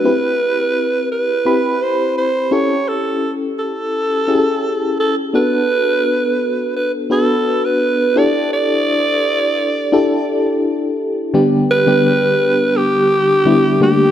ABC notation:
X:1
M:4/4
L:1/16
Q:1/4=85
K:Glyd
V:1 name="Alto saxophone"
B6 B4 =c2 c2 ^c2 | A2 z2 A8 A2 B2- | B6 B2 A3 B3 d2 | d12 z4 |
z2 B6 G6 G2 |]
V:2 name="FM electric piano"
[=CEGB]6- [CEGB] z [CEGb]6 [^CEGA]2- | [CEGA]4- [CEGA] z3 [CEG^GA]6 [B,DFA]2- | [B,DFA]4- [B,DFA] z3 [B,DFB]6 [DEGA]2- | [DEGA]4- [DEGA] z3 [DEGA]6- [DEGA] z |
[D,G,B,DG]3 [D,G,B,DG]6- [D,G,B,DG] z2 [D,G,B,DE]2 [D,G,A,_B,DG]2 |]